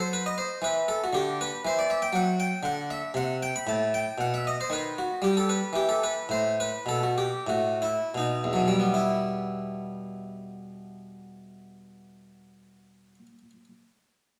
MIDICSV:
0, 0, Header, 1, 2, 480
1, 0, Start_track
1, 0, Key_signature, 1, "minor"
1, 0, Tempo, 510638
1, 570, Time_signature, 3, 2, 24, 8
1, 4885, Tempo, 548446
1, 6325, Tempo, 614125
1, 6805, Tempo, 675676
1, 7285, Tempo, 744417
1, 11323, End_track
2, 0, Start_track
2, 0, Title_t, "Harpsichord"
2, 0, Program_c, 0, 6
2, 0, Note_on_c, 0, 54, 57
2, 0, Note_on_c, 0, 72, 67
2, 102, Note_off_c, 0, 72, 0
2, 124, Note_on_c, 0, 71, 79
2, 227, Note_off_c, 0, 71, 0
2, 246, Note_on_c, 0, 75, 73
2, 299, Note_off_c, 0, 54, 0
2, 349, Note_off_c, 0, 75, 0
2, 355, Note_on_c, 0, 72, 73
2, 581, Note_on_c, 0, 52, 56
2, 582, Note_off_c, 0, 72, 0
2, 603, Note_on_c, 0, 71, 79
2, 791, Note_off_c, 0, 71, 0
2, 830, Note_on_c, 0, 69, 76
2, 920, Note_off_c, 0, 52, 0
2, 938, Note_off_c, 0, 69, 0
2, 975, Note_on_c, 0, 66, 73
2, 1060, Note_on_c, 0, 50, 58
2, 1071, Note_off_c, 0, 66, 0
2, 1076, Note_on_c, 0, 67, 77
2, 1302, Note_off_c, 0, 67, 0
2, 1326, Note_on_c, 0, 71, 77
2, 1401, Note_off_c, 0, 50, 0
2, 1513, Note_off_c, 0, 71, 0
2, 1548, Note_on_c, 0, 52, 59
2, 1566, Note_on_c, 0, 72, 81
2, 1665, Note_off_c, 0, 72, 0
2, 1680, Note_on_c, 0, 74, 66
2, 1781, Note_off_c, 0, 74, 0
2, 1788, Note_on_c, 0, 76, 80
2, 1880, Note_off_c, 0, 52, 0
2, 1893, Note_off_c, 0, 76, 0
2, 1901, Note_on_c, 0, 79, 84
2, 1999, Note_on_c, 0, 54, 63
2, 2009, Note_off_c, 0, 79, 0
2, 2026, Note_on_c, 0, 78, 82
2, 2219, Note_off_c, 0, 78, 0
2, 2254, Note_on_c, 0, 79, 78
2, 2345, Note_off_c, 0, 54, 0
2, 2452, Note_off_c, 0, 79, 0
2, 2470, Note_on_c, 0, 50, 59
2, 2492, Note_on_c, 0, 78, 79
2, 2727, Note_off_c, 0, 78, 0
2, 2730, Note_on_c, 0, 76, 83
2, 2819, Note_off_c, 0, 50, 0
2, 2954, Note_on_c, 0, 48, 60
2, 2965, Note_off_c, 0, 76, 0
2, 2978, Note_on_c, 0, 78, 85
2, 3208, Note_off_c, 0, 78, 0
2, 3220, Note_on_c, 0, 79, 81
2, 3300, Note_off_c, 0, 48, 0
2, 3328, Note_off_c, 0, 79, 0
2, 3344, Note_on_c, 0, 83, 83
2, 3448, Note_on_c, 0, 45, 63
2, 3450, Note_off_c, 0, 83, 0
2, 3467, Note_on_c, 0, 81, 83
2, 3659, Note_off_c, 0, 81, 0
2, 3706, Note_on_c, 0, 79, 78
2, 3792, Note_off_c, 0, 45, 0
2, 3900, Note_off_c, 0, 79, 0
2, 3927, Note_on_c, 0, 47, 55
2, 3954, Note_on_c, 0, 78, 75
2, 4058, Note_off_c, 0, 78, 0
2, 4080, Note_on_c, 0, 76, 68
2, 4181, Note_off_c, 0, 76, 0
2, 4204, Note_on_c, 0, 75, 74
2, 4271, Note_off_c, 0, 47, 0
2, 4302, Note_off_c, 0, 75, 0
2, 4330, Note_on_c, 0, 72, 68
2, 4416, Note_on_c, 0, 51, 56
2, 4426, Note_off_c, 0, 72, 0
2, 4443, Note_on_c, 0, 71, 73
2, 4665, Note_off_c, 0, 71, 0
2, 4685, Note_on_c, 0, 66, 64
2, 4760, Note_off_c, 0, 51, 0
2, 4904, Note_on_c, 0, 55, 57
2, 4906, Note_off_c, 0, 66, 0
2, 4924, Note_on_c, 0, 67, 72
2, 5018, Note_off_c, 0, 67, 0
2, 5037, Note_on_c, 0, 69, 68
2, 5132, Note_off_c, 0, 69, 0
2, 5145, Note_on_c, 0, 71, 68
2, 5228, Note_off_c, 0, 55, 0
2, 5351, Note_on_c, 0, 52, 53
2, 5361, Note_off_c, 0, 71, 0
2, 5374, Note_on_c, 0, 67, 65
2, 5478, Note_off_c, 0, 67, 0
2, 5490, Note_on_c, 0, 69, 70
2, 5597, Note_off_c, 0, 69, 0
2, 5618, Note_on_c, 0, 71, 70
2, 5696, Note_off_c, 0, 52, 0
2, 5842, Note_on_c, 0, 45, 50
2, 5844, Note_off_c, 0, 71, 0
2, 5862, Note_on_c, 0, 72, 71
2, 6056, Note_off_c, 0, 72, 0
2, 6115, Note_on_c, 0, 71, 68
2, 6196, Note_off_c, 0, 45, 0
2, 6338, Note_on_c, 0, 47, 50
2, 6345, Note_off_c, 0, 71, 0
2, 6360, Note_on_c, 0, 69, 75
2, 6459, Note_off_c, 0, 69, 0
2, 6474, Note_on_c, 0, 66, 56
2, 6577, Note_off_c, 0, 66, 0
2, 6587, Note_on_c, 0, 67, 62
2, 6680, Note_off_c, 0, 47, 0
2, 6785, Note_off_c, 0, 67, 0
2, 6812, Note_on_c, 0, 45, 47
2, 6831, Note_on_c, 0, 66, 63
2, 7052, Note_off_c, 0, 66, 0
2, 7064, Note_on_c, 0, 64, 56
2, 7156, Note_off_c, 0, 45, 0
2, 7293, Note_on_c, 0, 47, 45
2, 7297, Note_off_c, 0, 64, 0
2, 7313, Note_on_c, 0, 63, 53
2, 7486, Note_on_c, 0, 40, 43
2, 7521, Note_off_c, 0, 47, 0
2, 7542, Note_on_c, 0, 54, 43
2, 7560, Note_on_c, 0, 47, 36
2, 7637, Note_on_c, 0, 55, 38
2, 7714, Note_on_c, 0, 59, 38
2, 7774, Note_off_c, 0, 54, 0
2, 7793, Note_off_c, 0, 63, 0
2, 7806, Note_on_c, 0, 64, 44
2, 10519, Note_off_c, 0, 40, 0
2, 10593, Note_off_c, 0, 47, 0
2, 10670, Note_off_c, 0, 55, 0
2, 10748, Note_off_c, 0, 59, 0
2, 10840, Note_off_c, 0, 64, 0
2, 11323, End_track
0, 0, End_of_file